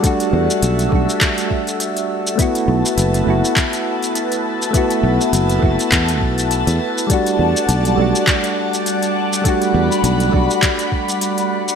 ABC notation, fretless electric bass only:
X:1
M:4/4
L:1/16
Q:"Swing 16ths" 1/4=102
K:Em
V:1 name="Fretless electric bass" clef=bass
z2 E,, z B,,,2 B,,, z8 z | z2 B,,, z F,,,2 F,,, z8 z | z2 B,,, z F,,,2 F,,, z E,,2 B,,,3 E,, z2 | z2 E,, z B,,,2 B,,, z8 z |
z2 E,, z B,,,2 B,,, z8 z |]